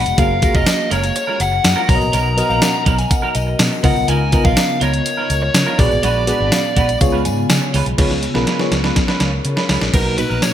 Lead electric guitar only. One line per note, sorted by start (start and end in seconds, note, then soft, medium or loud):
0.00 0.17 F#5 medium
0.18 0.56 F5 medium
0.55 0.92 D#5 medium
0.92 1.14 C#5 medium
1.16 1.41 C#5 medium
1.41 1.86 F#5 loud
1.89 2.83 A#5 loud
3.85 4.07 F#5 medium
4.09 4.45 G#5 loud
4.45 4.83 F5 loud
4.82 5.41 C#5 medium
5.43 5.79 C#5 medium
5.79 6.02 D5 medium
6.04 6.97 D5 medium
9.94 10.18 A#4 medium
10.18 10.41 B4 medium
10.43 10.49 C#5 medium